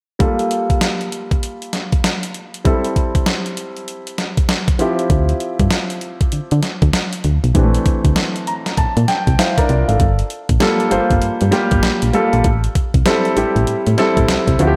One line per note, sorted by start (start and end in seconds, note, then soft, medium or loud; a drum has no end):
0.19 2.61 G3 medium
0.19 2.61 A#3 medium
0.19 2.61 F4 medium
0.19 2.62 A4 medium
0.19 kick loud
0.19 closed hi-hat medium
0.39 closed hi-hat medium
0.51 closed hi-hat medium
0.70 kick medium
0.70 closed hi-hat medium
0.81 snare loud
0.81 closed hi-hat medium
1.01 closed hi-hat soft
1.12 closed hi-hat medium
1.31 kick medium
1.31 closed hi-hat soft
1.43 closed hi-hat medium
1.62 closed hi-hat soft
1.73 snare medium
1.73 closed hi-hat medium
1.92 kick medium
1.92 closed hi-hat soft
2.04 snare loud
2.04 closed hi-hat medium
2.23 closed hi-hat medium
2.34 closed hi-hat medium
2.54 closed hi-hat medium
2.65 4.75 G3 medium
2.65 4.75 C4 medium
2.65 4.76 E4 medium
2.65 4.76 A4 medium
2.65 kick loud
2.65 closed hi-hat medium
2.85 closed hi-hat medium
2.96 kick medium
2.96 closed hi-hat medium
3.15 kick medium
3.15 closed hi-hat soft
3.26 snare loud
3.26 closed hi-hat medium
3.46 closed hi-hat medium
3.57 closed hi-hat medium
3.77 closed hi-hat soft
3.88 closed hi-hat medium
4.07 closed hi-hat medium
4.18 snare medium
4.18 closed hi-hat medium
4.37 kick medium
4.37 closed hi-hat medium
4.49 snare loud
4.49 closed hi-hat medium
4.68 kick medium
4.68 closed hi-hat medium
4.79 7.20 F3 medium
4.79 7.21 C4 medium
4.79 7.21 E4 medium
4.79 7.21 G4 medium
4.79 closed hi-hat medium
4.99 closed hi-hat medium
5.10 5.33 D2 loud
5.10 kick loud
5.10 closed hi-hat medium
5.29 closed hi-hat medium
5.40 closed hi-hat medium
5.59 5.68 G2 medium
5.59 kick medium
5.59 closed hi-hat soft
5.71 snare loud
5.71 closed hi-hat medium
5.90 closed hi-hat medium
6.01 closed hi-hat medium
6.21 kick medium
6.21 closed hi-hat soft
6.32 6.40 D3 soft
6.32 closed hi-hat medium
6.51 6.61 D3 medium
6.51 closed hi-hat medium
6.63 snare medium
6.63 closed hi-hat medium
6.82 6.91 D2 medium
6.82 kick medium
6.82 closed hi-hat medium
6.93 snare loud
6.93 closed hi-hat medium
7.13 closed hi-hat medium
7.24 7.39 D2 medium
7.24 closed hi-hat medium
7.44 7.52 B1 medium
7.44 closed hi-hat medium
7.54 7.78 A#1 loud
7.54 9.96 E3 medium
7.54 9.96 C4 medium
7.54 9.35 D4 medium
7.54 7.64 G4 medium
7.54 kick loud
7.54 closed hi-hat medium
7.63 9.39 A3 medium
7.75 closed hi-hat medium
7.86 kick medium
7.86 closed hi-hat medium
8.05 8.13 D2 medium
8.05 kick medium
8.05 closed hi-hat soft
8.16 snare loud
8.16 closed hi-hat medium
8.36 closed hi-hat soft
8.47 8.76 A#5 medium
8.47 closed hi-hat medium
8.66 snare medium
8.66 closed hi-hat soft
8.77 8.85 A#2 soft
8.77 9.06 A5 medium
8.77 kick medium
8.77 closed hi-hat medium
8.97 9.05 A#2 medium
8.97 closed hi-hat medium
9.08 9.37 G5 medium
9.08 snare medium
9.08 closed hi-hat medium
9.27 9.36 C2 loud
9.27 kick medium
9.27 closed hi-hat medium
9.39 9.57 E4 medium
9.39 9.57 C5 medium
9.39 9.57 F5 medium
9.39 snare loud
9.39 closed hi-hat medium
9.58 9.69 D4 medium
9.58 9.69 A#4 medium
9.58 9.68 D5 medium
9.58 kick medium
9.58 closed hi-hat medium
9.69 9.84 C2 medium
9.69 9.88 F4 medium
9.69 9.88 D5 medium
9.69 closed hi-hat medium
9.88 9.97 G#1 medium
9.88 10.18 A4 medium
9.88 10.17 F5 medium
9.88 closed hi-hat medium
10.00 10.23 G1 loud
10.00 kick loud
10.00 closed hi-hat medium
10.19 closed hi-hat medium
10.30 closed hi-hat medium
10.49 10.58 A#1 medium
10.49 kick medium
10.49 closed hi-hat medium
10.60 10.83 G3 medium
10.60 10.83 A#3 medium
10.60 10.83 F4 medium
10.60 10.83 A4 loud
10.60 snare loud
10.60 closed hi-hat medium
10.80 closed hi-hat soft
10.91 10.99 G1 soft
10.91 11.31 G3 medium
10.91 11.32 A#3 medium
10.91 11.32 F4 medium
10.91 11.32 C5 medium
10.91 closed hi-hat medium
11.11 11.19 G1 medium
11.11 kick medium
11.11 closed hi-hat soft
11.22 11.30 G2 soft
11.22 closed hi-hat medium
11.41 11.50 G2 medium
11.41 closed hi-hat medium
11.51 11.93 G3 medium
11.51 11.93 A#3 medium
11.51 11.93 F4 medium
11.51 11.93 G4 loud
11.51 snare medium
11.51 closed hi-hat medium
11.71 11.81 G1 medium
11.71 kick medium
11.71 closed hi-hat soft
11.83 11.91 A#1 soft
11.83 snare loud
11.83 closed hi-hat medium
12.02 12.11 A#1 medium
12.02 closed hi-hat medium
12.13 12.44 G3 medium
12.13 12.44 A#3 medium
12.13 12.45 F4 medium
12.13 12.45 A4 medium
12.13 closed hi-hat medium
12.33 12.42 A#1 medium
12.33 closed hi-hat medium
12.44 12.68 A1 loud
12.44 kick loud
12.44 closed hi-hat medium
12.64 closed hi-hat medium
12.75 kick medium
12.75 closed hi-hat medium
12.94 13.03 C2 medium
12.94 kick loud
12.94 closed hi-hat medium
13.06 13.28 G3 medium
13.06 13.28 C4 medium
13.06 13.28 E4 medium
13.06 13.29 A4 loud
13.06 snare loud
13.06 closed hi-hat medium
13.25 closed hi-hat soft
13.36 13.44 A1 soft
13.36 13.77 G3 medium
13.36 13.77 C4 medium
13.36 13.77 E4 medium
13.36 13.77 G4 medium
13.36 closed hi-hat medium
13.56 13.64 A1 medium
13.56 closed hi-hat medium
13.67 13.75 A2 soft
13.67 closed hi-hat medium
13.87 13.95 A2 medium
13.87 closed hi-hat medium
13.98 14.38 G3 medium
13.98 14.38 C4 medium
13.98 14.38 E4 medium
13.98 14.39 A4 loud
13.98 snare medium
13.98 closed hi-hat medium
14.17 14.26 A1 medium
14.17 kick medium
14.17 closed hi-hat medium
14.29 snare loud
14.29 closed hi-hat medium
14.48 14.56 C2 medium
14.48 kick medium
14.48 closed hi-hat medium
14.59 14.76 D2 medium
14.59 14.76 F3 medium
14.59 14.76 C4 medium
14.59 14.76 E4 medium
14.59 14.68 F#4 medium
14.59 closed hi-hat medium
14.67 14.76 G4 loud